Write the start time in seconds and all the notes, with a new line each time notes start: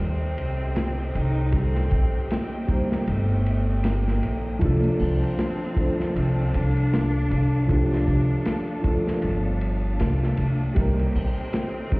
Already playing: G3 C4 D#4 G4 A#4 C5 D#5 G5
0.00 D#2 C4, ride
0.37 C2, ride
0.61 ride
0.76 snare, ride
1.15 C2 D#4, ride
1.51 G3 C4, kick, ride
1.55 C4 D#4 A4
1.75 snare
1.91 A#1, kick, ride
2.27 C4, ride
2.32 A#3, snare
2.53 ride
2.66 G3 C4 D#4, kick, ride
2.72 C5
2.92 snare
3.07 G1 A3, ride
3.46 ride
3.84 A#3, snare, ride
4.08 snare
4.23 A#1, ride
4.59 C2 F3 D4 A4 F5 A5, kick, ride
4.64 A#3 A4
4.84 ride
5.00 C2 C4, open hi-hat
5.23 ride
5.39 snare, ride
5.74 F3 A3 D4, kick, ride
5.80 C5
6.00 snare
6.16 C2 C4, ride
6.54 C2 D4, ride
6.77 ride
6.94 snare, ride
7.30 C2, ride
7.67 F3 A3 D4, kick, ride
7.73 G4
7.93 snare
8.08 C2, kick, ride
8.45 snare, ride
8.68 ride
8.81 F3 A3 D4, kick, ride
8.87 A4
9.07 snare
9.22 G1, ride
9.61 ride
9.95 A#3
10.00 C2 A3, snare, ride
10.23 snare
10.37 C2, ride
10.74 C2 G3 C4 D#4 G4 D#5 G5, kick, ride
10.78 A#3 A#4
10.99 ride
11.15 A#1 C4, open hi-hat
11.38 ride
11.53 snare, ride
11.89 G3 C4 D#4, kick, ride
11.95 C5